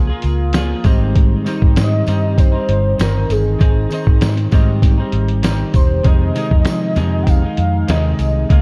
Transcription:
0.00 0.12 C#2 medium
0.07 0.54 A#3 soft
0.07 0.55 F4 medium
0.07 0.54 G#4 medium
0.22 0.73 C#2 medium
0.22 closed hi-hat medium
0.22 tambourine soft
0.53 0.85 F3 medium
0.53 0.85 A#3 medium
0.53 0.86 F4 medium
0.53 snare loud
0.53 closed hi-hat loud
0.53 tambourine medium
0.57 0.86 G#4 medium
0.84 1.34 G#1 medium
0.84 1.46 G#2 medium
0.84 1.44 D#3 medium
0.84 1.45 G3 medium
0.84 1.47 C4 loud
0.84 1.48 D#4 loud
0.84 kick medium
0.84 closed hi-hat medium
0.84 tambourine medium
1.16 kick loud
1.16 closed hi-hat loud
1.45 2.07 D#3 medium
1.45 2.07 G3 medium
1.45 2.08 C4 medium
1.45 2.08 D#4 medium
1.45 closed hi-hat medium
1.45 tambourine medium
1.62 1.74 G#1 loud
1.62 kick medium
1.76 2.01 G#2 loud
1.76 2.35 D#5 loud
1.76 snare loud
1.76 closed hi-hat loud
1.76 tambourine medium
2.07 2.56 G2 medium
2.07 2.53 D#3 medium
2.07 2.54 G3 medium
2.07 2.53 C4 medium
2.07 2.51 D#4 medium
2.07 closed hi-hat medium
2.07 tambourine soft
2.38 3.03 C5 loud
2.38 kick medium
2.38 closed hi-hat loud
2.38 tambourine soft
2.52 3.00 G3 medium
2.52 3.00 C4 soft
2.52 2.99 D#4 medium
2.69 2.93 G1 loud
2.69 closed hi-hat medium
2.98 3.24 G1 medium
2.98 3.58 D#3 medium
2.98 3.61 C4 medium
2.98 3.33 A#4 medium
2.98 snare loud
2.98 closed hi-hat medium
2.98 tambourine medium
3.02 3.62 D#4 medium
3.30 3.54 G1 medium
3.30 4.22 G#4 medium
3.30 closed hi-hat medium
3.30 tambourine soft
3.59 3.85 G#1 medium
3.59 3.89 D#3 medium
3.59 3.92 C4 medium
3.59 3.92 D#4 medium
3.59 kick medium
3.59 closed hi-hat medium
3.59 tambourine soft
3.90 4.52 D#3 medium
3.90 4.53 C4 medium
3.90 4.54 D#4 medium
3.90 closed hi-hat medium
3.90 tambourine medium
4.07 4.19 G#1 loud
4.07 kick medium
4.21 4.46 G#2 loud
4.21 snare loud
4.21 closed hi-hat medium
4.21 tambourine medium
4.37 closed hi-hat soft
4.51 4.98 G#2 medium
4.51 5.01 G#2 medium
4.51 4.98 D#3 medium
4.51 4.99 G3 medium
4.51 4.99 C4 medium
4.51 4.96 D#4 medium
4.51 kick medium
4.51 closed hi-hat medium
4.51 tambourine soft
4.82 kick medium
4.82 snare soft
4.82 closed hi-hat medium
4.82 tambourine soft
4.98 5.43 G3 medium
4.98 5.44 C4 medium
4.98 5.44 D#4 medium
5.12 5.62 G#1 medium
5.12 closed hi-hat medium
5.28 closed hi-hat soft
5.42 6.03 D#3 medium
5.42 6.05 G3 medium
5.42 6.06 C4 medium
5.42 6.07 D#4 medium
5.42 snare loud
5.42 closed hi-hat loud
5.42 tambourine medium
5.74 5.99 E1 medium
5.74 6.08 C5 medium
5.74 kick medium
5.74 closed hi-hat medium
5.74 tambourine medium
6.04 6.30 F2 loud
6.04 6.33 C3 medium
6.04 6.34 D#3 medium
6.04 6.36 G#3 medium
6.04 7.24 D#5 loud
6.04 kick loud
6.04 closed hi-hat medium
6.04 tambourine soft
6.08 6.37 D#4 medium
6.34 6.96 C3 medium
6.34 6.96 D#3 medium
6.34 6.97 G#3 medium
6.34 6.97 D#4 medium
6.34 closed hi-hat medium
6.34 tambourine medium
6.51 6.64 F2 medium
6.51 kick medium
6.65 6.98 F3 loud
6.65 snare loud
6.65 closed hi-hat loud
6.65 tambourine medium
6.96 7.42 F2 medium
6.96 7.46 F2 medium
6.96 7.43 C3 loud
6.96 7.43 D#3 medium
6.96 7.43 G#3 loud
6.96 7.41 D#4 medium
6.96 closed hi-hat medium
6.96 tambourine soft
7.23 7.31 G5 medium
7.27 7.91 F5 loud
7.27 kick medium
7.27 closed hi-hat medium
7.27 tambourine soft
7.42 7.88 D#3 soft
7.42 7.89 G#3 soft
7.42 7.88 D#4 medium
7.57 7.83 F2 medium
7.57 closed hi-hat medium
7.87 8.13 D#2 medium
7.87 8.49 C3 medium
7.87 8.50 D#3 medium
7.87 8.51 G#3 medium
7.87 8.51 D#4 medium
7.87 8.51 D#5 medium
7.87 snare loud
7.87 closed hi-hat loud
7.87 tambourine medium
8.19 8.44 C2 medium
8.19 closed hi-hat medium
8.19 tambourine soft
8.49 8.62 C#2 medium
8.49 8.62 C#3 medium
8.49 8.62 G#3 medium
8.49 8.62 A#3 medium
8.49 8.62 F4 medium
8.49 8.62 F5 medium
8.49 kick loud
8.49 closed hi-hat medium

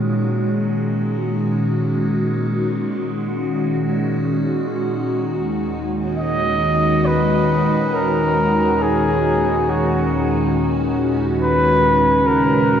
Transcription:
0.00 5.32 A#2 medium
0.00 5.31 D#3 medium
0.00 12.80 D#3 medium
0.00 12.80 G#3 medium
0.00 5.31 C#4 medium
0.00 12.80 D#4 medium
0.00 12.80 F#4 medium
5.31 12.80 D#2 medium
5.38 12.80 A#2 medium
5.55 12.15 D#3 medium
5.55 12.80 C#4 medium
6.18 7.07 D#5 loud
7.06 7.95 B4 medium
7.94 8.83 A#4 loud
8.82 9.71 G#4 medium
9.70 10.33 F#4 medium
11.41 12.28 B4 loud
11.88 12.80 C#3 medium
12.26 12.80 A#4 loud

